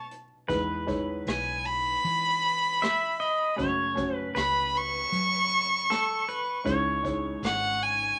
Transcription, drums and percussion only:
0.11 closed hi-hat
0.49 kick, closed hi-hat
0.88 kick, closed hi-hat
1.27 cross-stick, closed hi-hat
1.65 closed hi-hat
2.05 closed hi-hat
2.43 closed hi-hat
2.82 cross-stick, closed hi-hat
3.21 closed hi-hat
3.59 kick, closed hi-hat
3.97 kick, closed hi-hat
4.35 cross-stick, closed hi-hat
4.75 closed hi-hat
5.13 closed hi-hat
5.51 closed hi-hat
5.90 cross-stick, closed hi-hat
6.28 closed hi-hat
6.66 kick, closed hi-hat
7.05 kick, closed hi-hat
7.43 cross-stick, closed hi-hat
7.82 closed hi-hat

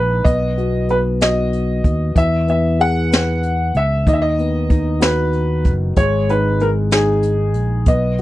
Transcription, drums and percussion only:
0.25 kick, closed hi-hat
0.58 closed hi-hat
0.89 closed hi-hat
1.21 snare, closed hi-hat
1.53 closed hi-hat
1.84 kick, closed hi-hat
2.16 kick, closed hi-hat
2.48 closed hi-hat
2.80 closed hi-hat
3.12 snare, closed hi-hat
3.43 closed hi-hat
3.74 closed hi-hat
4.07 kick, closed hi-hat
4.39 closed hi-hat
4.70 kick, closed hi-hat
5.01 snare, closed hi-hat
5.33 closed hi-hat
5.64 kick, closed hi-hat
5.96 kick, closed hi-hat
6.29 closed hi-hat
6.60 closed hi-hat
6.91 snare, closed hi-hat
7.23 closed hi-hat
7.54 closed hi-hat
7.86 kick, closed hi-hat
8.18 closed hi-hat

